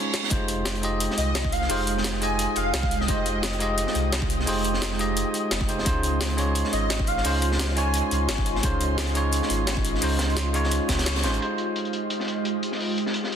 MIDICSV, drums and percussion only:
0, 0, Header, 1, 2, 480
1, 0, Start_track
1, 0, Key_signature, -4, "minor"
1, 0, Tempo, 346821
1, 432, Time_signature, 4, 2, 24, 8
1, 18487, End_track
2, 0, Start_track
2, 0, Title_t, "Drums"
2, 189, Note_on_c, 9, 38, 88
2, 189, Note_on_c, 9, 42, 67
2, 193, Note_off_c, 9, 42, 0
2, 193, Note_on_c, 9, 42, 60
2, 324, Note_off_c, 9, 38, 0
2, 324, Note_on_c, 9, 38, 46
2, 332, Note_off_c, 9, 42, 0
2, 418, Note_on_c, 9, 42, 81
2, 429, Note_off_c, 9, 42, 0
2, 429, Note_on_c, 9, 42, 95
2, 431, Note_on_c, 9, 36, 112
2, 463, Note_off_c, 9, 38, 0
2, 568, Note_off_c, 9, 42, 0
2, 570, Note_off_c, 9, 36, 0
2, 669, Note_on_c, 9, 42, 67
2, 672, Note_off_c, 9, 42, 0
2, 672, Note_on_c, 9, 42, 75
2, 810, Note_off_c, 9, 42, 0
2, 905, Note_on_c, 9, 38, 116
2, 908, Note_off_c, 9, 38, 0
2, 908, Note_on_c, 9, 38, 116
2, 908, Note_on_c, 9, 42, 97
2, 918, Note_off_c, 9, 42, 0
2, 918, Note_on_c, 9, 42, 92
2, 1043, Note_off_c, 9, 42, 0
2, 1043, Note_on_c, 9, 42, 39
2, 1047, Note_off_c, 9, 38, 0
2, 1151, Note_off_c, 9, 42, 0
2, 1151, Note_on_c, 9, 42, 65
2, 1154, Note_off_c, 9, 42, 0
2, 1154, Note_on_c, 9, 42, 62
2, 1293, Note_off_c, 9, 42, 0
2, 1390, Note_on_c, 9, 42, 95
2, 1398, Note_off_c, 9, 42, 0
2, 1398, Note_on_c, 9, 42, 90
2, 1533, Note_on_c, 9, 38, 42
2, 1537, Note_off_c, 9, 42, 0
2, 1629, Note_on_c, 9, 42, 66
2, 1637, Note_off_c, 9, 42, 0
2, 1637, Note_on_c, 9, 42, 70
2, 1671, Note_off_c, 9, 38, 0
2, 1776, Note_off_c, 9, 42, 0
2, 1868, Note_on_c, 9, 38, 118
2, 1868, Note_on_c, 9, 42, 93
2, 1870, Note_off_c, 9, 38, 0
2, 1870, Note_on_c, 9, 38, 114
2, 1879, Note_off_c, 9, 42, 0
2, 1879, Note_on_c, 9, 42, 81
2, 1999, Note_on_c, 9, 36, 101
2, 2008, Note_off_c, 9, 38, 0
2, 2017, Note_off_c, 9, 42, 0
2, 2110, Note_on_c, 9, 42, 64
2, 2117, Note_off_c, 9, 42, 0
2, 2117, Note_on_c, 9, 42, 71
2, 2138, Note_off_c, 9, 36, 0
2, 2236, Note_on_c, 9, 38, 34
2, 2256, Note_off_c, 9, 42, 0
2, 2347, Note_on_c, 9, 46, 77
2, 2348, Note_on_c, 9, 42, 93
2, 2374, Note_off_c, 9, 38, 0
2, 2486, Note_off_c, 9, 42, 0
2, 2486, Note_off_c, 9, 46, 0
2, 2590, Note_on_c, 9, 42, 64
2, 2598, Note_off_c, 9, 42, 0
2, 2598, Note_on_c, 9, 42, 64
2, 2736, Note_off_c, 9, 42, 0
2, 2736, Note_on_c, 9, 38, 44
2, 2828, Note_off_c, 9, 38, 0
2, 2828, Note_on_c, 9, 38, 118
2, 2828, Note_on_c, 9, 42, 92
2, 2830, Note_off_c, 9, 42, 0
2, 2830, Note_on_c, 9, 42, 85
2, 2835, Note_off_c, 9, 38, 0
2, 2835, Note_on_c, 9, 38, 124
2, 2960, Note_off_c, 9, 38, 0
2, 2960, Note_on_c, 9, 38, 35
2, 2968, Note_off_c, 9, 42, 0
2, 3070, Note_on_c, 9, 42, 65
2, 3075, Note_off_c, 9, 42, 0
2, 3075, Note_on_c, 9, 42, 67
2, 3099, Note_off_c, 9, 38, 0
2, 3213, Note_off_c, 9, 42, 0
2, 3307, Note_on_c, 9, 42, 84
2, 3308, Note_off_c, 9, 42, 0
2, 3308, Note_on_c, 9, 42, 91
2, 3446, Note_off_c, 9, 42, 0
2, 3541, Note_on_c, 9, 42, 62
2, 3549, Note_off_c, 9, 42, 0
2, 3549, Note_on_c, 9, 42, 65
2, 3688, Note_off_c, 9, 42, 0
2, 3788, Note_on_c, 9, 38, 121
2, 3788, Note_on_c, 9, 42, 91
2, 3792, Note_off_c, 9, 38, 0
2, 3792, Note_on_c, 9, 38, 118
2, 3803, Note_off_c, 9, 42, 0
2, 3803, Note_on_c, 9, 42, 81
2, 3919, Note_on_c, 9, 36, 106
2, 3924, Note_off_c, 9, 38, 0
2, 3924, Note_on_c, 9, 38, 39
2, 3941, Note_off_c, 9, 42, 0
2, 4030, Note_on_c, 9, 42, 64
2, 4038, Note_off_c, 9, 42, 0
2, 4038, Note_on_c, 9, 42, 70
2, 4058, Note_off_c, 9, 36, 0
2, 4063, Note_off_c, 9, 38, 0
2, 4164, Note_on_c, 9, 38, 46
2, 4177, Note_off_c, 9, 42, 0
2, 4267, Note_on_c, 9, 42, 78
2, 4269, Note_off_c, 9, 42, 0
2, 4269, Note_on_c, 9, 42, 89
2, 4273, Note_on_c, 9, 36, 117
2, 4302, Note_off_c, 9, 38, 0
2, 4407, Note_off_c, 9, 42, 0
2, 4411, Note_off_c, 9, 36, 0
2, 4510, Note_on_c, 9, 42, 62
2, 4512, Note_off_c, 9, 42, 0
2, 4512, Note_on_c, 9, 42, 69
2, 4650, Note_off_c, 9, 42, 0
2, 4748, Note_on_c, 9, 38, 120
2, 4748, Note_on_c, 9, 42, 86
2, 4753, Note_off_c, 9, 42, 0
2, 4753, Note_on_c, 9, 42, 92
2, 4759, Note_off_c, 9, 38, 0
2, 4759, Note_on_c, 9, 38, 115
2, 4887, Note_off_c, 9, 42, 0
2, 4887, Note_on_c, 9, 42, 44
2, 4897, Note_off_c, 9, 38, 0
2, 4988, Note_off_c, 9, 42, 0
2, 4988, Note_on_c, 9, 42, 62
2, 4994, Note_off_c, 9, 42, 0
2, 4994, Note_on_c, 9, 42, 63
2, 5133, Note_off_c, 9, 42, 0
2, 5228, Note_on_c, 9, 42, 87
2, 5233, Note_off_c, 9, 42, 0
2, 5233, Note_on_c, 9, 42, 84
2, 5360, Note_on_c, 9, 38, 43
2, 5371, Note_off_c, 9, 42, 0
2, 5468, Note_on_c, 9, 42, 63
2, 5477, Note_off_c, 9, 42, 0
2, 5477, Note_on_c, 9, 42, 61
2, 5498, Note_off_c, 9, 38, 0
2, 5615, Note_off_c, 9, 42, 0
2, 5709, Note_on_c, 9, 38, 126
2, 5709, Note_on_c, 9, 42, 85
2, 5714, Note_off_c, 9, 42, 0
2, 5714, Note_on_c, 9, 42, 84
2, 5718, Note_off_c, 9, 38, 0
2, 5718, Note_on_c, 9, 38, 122
2, 5841, Note_on_c, 9, 36, 111
2, 5853, Note_off_c, 9, 42, 0
2, 5856, Note_off_c, 9, 38, 0
2, 5950, Note_on_c, 9, 42, 63
2, 5954, Note_off_c, 9, 42, 0
2, 5954, Note_on_c, 9, 42, 64
2, 5979, Note_off_c, 9, 36, 0
2, 6087, Note_on_c, 9, 38, 39
2, 6092, Note_off_c, 9, 42, 0
2, 6190, Note_on_c, 9, 42, 89
2, 6203, Note_on_c, 9, 46, 81
2, 6225, Note_off_c, 9, 38, 0
2, 6329, Note_off_c, 9, 42, 0
2, 6342, Note_off_c, 9, 46, 0
2, 6430, Note_on_c, 9, 42, 60
2, 6438, Note_off_c, 9, 42, 0
2, 6438, Note_on_c, 9, 42, 71
2, 6558, Note_on_c, 9, 38, 43
2, 6576, Note_off_c, 9, 42, 0
2, 6669, Note_off_c, 9, 38, 0
2, 6669, Note_on_c, 9, 38, 121
2, 6669, Note_on_c, 9, 42, 86
2, 6677, Note_off_c, 9, 38, 0
2, 6677, Note_on_c, 9, 38, 104
2, 6679, Note_off_c, 9, 42, 0
2, 6679, Note_on_c, 9, 42, 83
2, 6806, Note_off_c, 9, 38, 0
2, 6806, Note_on_c, 9, 38, 35
2, 6817, Note_off_c, 9, 42, 0
2, 6911, Note_on_c, 9, 42, 62
2, 6927, Note_off_c, 9, 42, 0
2, 6927, Note_on_c, 9, 42, 62
2, 6944, Note_off_c, 9, 38, 0
2, 7065, Note_off_c, 9, 42, 0
2, 7151, Note_on_c, 9, 42, 89
2, 7159, Note_off_c, 9, 42, 0
2, 7159, Note_on_c, 9, 42, 81
2, 7297, Note_off_c, 9, 42, 0
2, 7391, Note_on_c, 9, 42, 59
2, 7402, Note_off_c, 9, 42, 0
2, 7402, Note_on_c, 9, 42, 63
2, 7541, Note_off_c, 9, 42, 0
2, 7628, Note_on_c, 9, 38, 121
2, 7628, Note_on_c, 9, 42, 86
2, 7632, Note_off_c, 9, 42, 0
2, 7632, Note_on_c, 9, 42, 85
2, 7642, Note_off_c, 9, 38, 0
2, 7642, Note_on_c, 9, 38, 120
2, 7762, Note_on_c, 9, 36, 107
2, 7768, Note_off_c, 9, 38, 0
2, 7768, Note_on_c, 9, 38, 41
2, 7770, Note_off_c, 9, 42, 0
2, 7870, Note_on_c, 9, 42, 62
2, 7874, Note_off_c, 9, 42, 0
2, 7874, Note_on_c, 9, 42, 66
2, 7900, Note_off_c, 9, 36, 0
2, 7907, Note_off_c, 9, 38, 0
2, 8008, Note_on_c, 9, 38, 50
2, 8012, Note_off_c, 9, 42, 0
2, 8110, Note_on_c, 9, 42, 90
2, 8114, Note_on_c, 9, 36, 110
2, 8115, Note_off_c, 9, 42, 0
2, 8115, Note_on_c, 9, 42, 83
2, 8146, Note_off_c, 9, 38, 0
2, 8253, Note_off_c, 9, 36, 0
2, 8254, Note_off_c, 9, 42, 0
2, 8351, Note_on_c, 9, 42, 62
2, 8359, Note_off_c, 9, 42, 0
2, 8359, Note_on_c, 9, 42, 68
2, 8497, Note_off_c, 9, 42, 0
2, 8590, Note_on_c, 9, 38, 118
2, 8590, Note_on_c, 9, 42, 85
2, 8602, Note_off_c, 9, 42, 0
2, 8602, Note_on_c, 9, 42, 91
2, 8604, Note_off_c, 9, 38, 0
2, 8604, Note_on_c, 9, 38, 116
2, 8719, Note_off_c, 9, 42, 0
2, 8719, Note_on_c, 9, 42, 41
2, 8743, Note_off_c, 9, 38, 0
2, 8831, Note_off_c, 9, 42, 0
2, 8831, Note_on_c, 9, 42, 63
2, 8834, Note_off_c, 9, 42, 0
2, 8834, Note_on_c, 9, 42, 75
2, 8972, Note_off_c, 9, 42, 0
2, 9068, Note_on_c, 9, 42, 85
2, 9072, Note_off_c, 9, 42, 0
2, 9072, Note_on_c, 9, 42, 87
2, 9194, Note_on_c, 9, 38, 39
2, 9211, Note_off_c, 9, 42, 0
2, 9312, Note_on_c, 9, 42, 64
2, 9315, Note_off_c, 9, 42, 0
2, 9315, Note_on_c, 9, 42, 63
2, 9333, Note_off_c, 9, 38, 0
2, 9454, Note_off_c, 9, 42, 0
2, 9550, Note_on_c, 9, 38, 119
2, 9551, Note_off_c, 9, 38, 0
2, 9551, Note_on_c, 9, 38, 119
2, 9551, Note_on_c, 9, 42, 88
2, 9552, Note_off_c, 9, 42, 0
2, 9552, Note_on_c, 9, 42, 93
2, 9681, Note_on_c, 9, 36, 100
2, 9690, Note_off_c, 9, 38, 0
2, 9690, Note_off_c, 9, 42, 0
2, 9786, Note_on_c, 9, 42, 69
2, 9792, Note_off_c, 9, 42, 0
2, 9792, Note_on_c, 9, 42, 61
2, 9820, Note_off_c, 9, 36, 0
2, 9928, Note_on_c, 9, 38, 39
2, 9930, Note_off_c, 9, 42, 0
2, 10026, Note_on_c, 9, 46, 80
2, 10031, Note_on_c, 9, 42, 93
2, 10067, Note_off_c, 9, 38, 0
2, 10165, Note_off_c, 9, 46, 0
2, 10169, Note_off_c, 9, 42, 0
2, 10269, Note_on_c, 9, 42, 73
2, 10271, Note_off_c, 9, 42, 0
2, 10271, Note_on_c, 9, 42, 65
2, 10405, Note_on_c, 9, 38, 50
2, 10409, Note_off_c, 9, 42, 0
2, 10511, Note_off_c, 9, 38, 0
2, 10511, Note_on_c, 9, 38, 113
2, 10511, Note_on_c, 9, 42, 90
2, 10512, Note_off_c, 9, 42, 0
2, 10512, Note_on_c, 9, 42, 87
2, 10517, Note_off_c, 9, 38, 0
2, 10517, Note_on_c, 9, 38, 115
2, 10647, Note_off_c, 9, 38, 0
2, 10647, Note_on_c, 9, 38, 35
2, 10651, Note_off_c, 9, 42, 0
2, 10750, Note_on_c, 9, 42, 65
2, 10765, Note_off_c, 9, 42, 0
2, 10765, Note_on_c, 9, 42, 72
2, 10786, Note_off_c, 9, 38, 0
2, 10903, Note_off_c, 9, 42, 0
2, 10986, Note_on_c, 9, 42, 93
2, 11004, Note_off_c, 9, 42, 0
2, 11004, Note_on_c, 9, 42, 86
2, 11142, Note_off_c, 9, 42, 0
2, 11229, Note_on_c, 9, 42, 64
2, 11243, Note_off_c, 9, 42, 0
2, 11243, Note_on_c, 9, 42, 71
2, 11381, Note_off_c, 9, 42, 0
2, 11469, Note_on_c, 9, 38, 115
2, 11469, Note_on_c, 9, 42, 92
2, 11478, Note_off_c, 9, 42, 0
2, 11478, Note_on_c, 9, 42, 91
2, 11480, Note_off_c, 9, 38, 0
2, 11480, Note_on_c, 9, 38, 118
2, 11600, Note_off_c, 9, 38, 0
2, 11600, Note_on_c, 9, 38, 45
2, 11601, Note_on_c, 9, 36, 101
2, 11616, Note_off_c, 9, 42, 0
2, 11707, Note_on_c, 9, 42, 62
2, 11708, Note_off_c, 9, 42, 0
2, 11708, Note_on_c, 9, 42, 64
2, 11738, Note_off_c, 9, 38, 0
2, 11739, Note_off_c, 9, 36, 0
2, 11843, Note_on_c, 9, 38, 48
2, 11846, Note_off_c, 9, 42, 0
2, 11946, Note_on_c, 9, 42, 96
2, 11950, Note_off_c, 9, 42, 0
2, 11950, Note_on_c, 9, 42, 91
2, 11953, Note_on_c, 9, 36, 111
2, 11981, Note_off_c, 9, 38, 0
2, 12088, Note_off_c, 9, 42, 0
2, 12092, Note_off_c, 9, 36, 0
2, 12187, Note_on_c, 9, 42, 68
2, 12192, Note_off_c, 9, 42, 0
2, 12192, Note_on_c, 9, 42, 66
2, 12330, Note_off_c, 9, 42, 0
2, 12427, Note_on_c, 9, 38, 114
2, 12427, Note_on_c, 9, 42, 95
2, 12435, Note_off_c, 9, 38, 0
2, 12435, Note_on_c, 9, 38, 121
2, 12436, Note_off_c, 9, 42, 0
2, 12436, Note_on_c, 9, 42, 85
2, 12556, Note_off_c, 9, 42, 0
2, 12556, Note_on_c, 9, 42, 43
2, 12573, Note_off_c, 9, 38, 0
2, 12664, Note_off_c, 9, 42, 0
2, 12664, Note_on_c, 9, 42, 67
2, 12667, Note_off_c, 9, 42, 0
2, 12667, Note_on_c, 9, 42, 66
2, 12805, Note_off_c, 9, 42, 0
2, 12907, Note_on_c, 9, 42, 96
2, 12920, Note_off_c, 9, 42, 0
2, 12920, Note_on_c, 9, 42, 87
2, 13043, Note_on_c, 9, 38, 38
2, 13059, Note_off_c, 9, 42, 0
2, 13148, Note_on_c, 9, 42, 67
2, 13158, Note_off_c, 9, 42, 0
2, 13158, Note_on_c, 9, 42, 67
2, 13181, Note_off_c, 9, 38, 0
2, 13296, Note_off_c, 9, 42, 0
2, 13385, Note_on_c, 9, 38, 112
2, 13385, Note_on_c, 9, 42, 93
2, 13401, Note_off_c, 9, 42, 0
2, 13401, Note_on_c, 9, 42, 89
2, 13404, Note_off_c, 9, 38, 0
2, 13404, Note_on_c, 9, 38, 121
2, 13520, Note_on_c, 9, 36, 100
2, 13540, Note_off_c, 9, 42, 0
2, 13542, Note_off_c, 9, 38, 0
2, 13627, Note_on_c, 9, 42, 66
2, 13638, Note_off_c, 9, 42, 0
2, 13638, Note_on_c, 9, 42, 73
2, 13659, Note_off_c, 9, 36, 0
2, 13769, Note_on_c, 9, 38, 34
2, 13777, Note_off_c, 9, 42, 0
2, 13866, Note_on_c, 9, 42, 95
2, 13879, Note_on_c, 9, 46, 81
2, 13907, Note_off_c, 9, 38, 0
2, 14004, Note_off_c, 9, 42, 0
2, 14018, Note_off_c, 9, 46, 0
2, 14103, Note_on_c, 9, 38, 106
2, 14106, Note_on_c, 9, 42, 68
2, 14110, Note_off_c, 9, 42, 0
2, 14110, Note_on_c, 9, 42, 85
2, 14241, Note_off_c, 9, 38, 0
2, 14248, Note_off_c, 9, 42, 0
2, 14252, Note_on_c, 9, 42, 37
2, 14347, Note_off_c, 9, 42, 0
2, 14347, Note_on_c, 9, 38, 112
2, 14347, Note_on_c, 9, 42, 96
2, 14353, Note_off_c, 9, 42, 0
2, 14353, Note_on_c, 9, 42, 60
2, 14485, Note_off_c, 9, 38, 0
2, 14492, Note_off_c, 9, 42, 0
2, 14587, Note_on_c, 9, 42, 70
2, 14603, Note_off_c, 9, 42, 0
2, 14603, Note_on_c, 9, 42, 81
2, 14724, Note_on_c, 9, 38, 40
2, 14742, Note_off_c, 9, 42, 0
2, 14829, Note_on_c, 9, 42, 98
2, 14862, Note_off_c, 9, 38, 0
2, 14968, Note_off_c, 9, 42, 0
2, 15069, Note_on_c, 9, 38, 36
2, 15069, Note_on_c, 9, 42, 68
2, 15071, Note_off_c, 9, 38, 0
2, 15071, Note_on_c, 9, 38, 101
2, 15073, Note_on_c, 9, 36, 59
2, 15080, Note_off_c, 9, 42, 0
2, 15080, Note_on_c, 9, 42, 79
2, 15206, Note_off_c, 9, 38, 0
2, 15206, Note_on_c, 9, 38, 98
2, 15210, Note_off_c, 9, 42, 0
2, 15210, Note_on_c, 9, 42, 72
2, 15211, Note_off_c, 9, 36, 0
2, 15310, Note_off_c, 9, 38, 0
2, 15310, Note_off_c, 9, 42, 0
2, 15310, Note_on_c, 9, 38, 114
2, 15310, Note_on_c, 9, 42, 96
2, 15320, Note_off_c, 9, 42, 0
2, 15320, Note_on_c, 9, 42, 77
2, 15323, Note_off_c, 9, 38, 0
2, 15323, Note_on_c, 9, 38, 110
2, 15445, Note_off_c, 9, 42, 0
2, 15445, Note_on_c, 9, 42, 78
2, 15457, Note_off_c, 9, 38, 0
2, 15457, Note_on_c, 9, 38, 102
2, 15549, Note_off_c, 9, 42, 0
2, 15549, Note_on_c, 9, 42, 70
2, 15558, Note_off_c, 9, 38, 0
2, 15558, Note_on_c, 9, 38, 101
2, 15559, Note_off_c, 9, 42, 0
2, 15559, Note_on_c, 9, 42, 78
2, 15692, Note_off_c, 9, 42, 0
2, 15692, Note_on_c, 9, 42, 41
2, 15696, Note_off_c, 9, 38, 0
2, 15808, Note_off_c, 9, 42, 0
2, 15808, Note_on_c, 9, 42, 76
2, 15946, Note_off_c, 9, 42, 0
2, 16029, Note_on_c, 9, 42, 64
2, 16167, Note_off_c, 9, 42, 0
2, 16274, Note_on_c, 9, 42, 73
2, 16403, Note_off_c, 9, 42, 0
2, 16403, Note_on_c, 9, 42, 44
2, 16513, Note_off_c, 9, 42, 0
2, 16513, Note_on_c, 9, 42, 63
2, 16651, Note_off_c, 9, 42, 0
2, 16750, Note_on_c, 9, 42, 88
2, 16884, Note_on_c, 9, 38, 39
2, 16888, Note_off_c, 9, 42, 0
2, 16994, Note_on_c, 9, 42, 65
2, 17022, Note_off_c, 9, 38, 0
2, 17132, Note_off_c, 9, 42, 0
2, 17233, Note_on_c, 9, 42, 83
2, 17371, Note_off_c, 9, 42, 0
2, 17478, Note_on_c, 9, 42, 68
2, 17604, Note_on_c, 9, 38, 34
2, 17617, Note_off_c, 9, 42, 0
2, 17720, Note_on_c, 9, 46, 70
2, 17742, Note_off_c, 9, 38, 0
2, 17858, Note_off_c, 9, 46, 0
2, 17961, Note_on_c, 9, 42, 67
2, 18081, Note_on_c, 9, 38, 40
2, 18099, Note_off_c, 9, 42, 0
2, 18186, Note_on_c, 9, 42, 85
2, 18219, Note_off_c, 9, 38, 0
2, 18321, Note_on_c, 9, 38, 33
2, 18324, Note_off_c, 9, 42, 0
2, 18439, Note_on_c, 9, 42, 63
2, 18460, Note_off_c, 9, 38, 0
2, 18487, Note_off_c, 9, 42, 0
2, 18487, End_track
0, 0, End_of_file